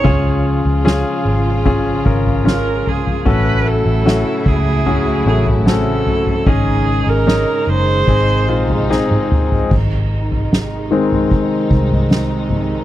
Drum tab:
CC |----------------|----------------|----------------|x---------------|
SD |----o-------o---|----o-------o---|----o-------o---|----o-------o---|
T1 |----------------|----------------|-------------o--|----------------|
T2 |----------------|----------------|--------------o-|----------------|
FT |o-------o--o--oo|o-----o-o--o--oo|o-------o--o---o|o--o---o---o--o-|
BD |o-------o-o-----|o-----o---------|o-------o-------|o-------o-o-----|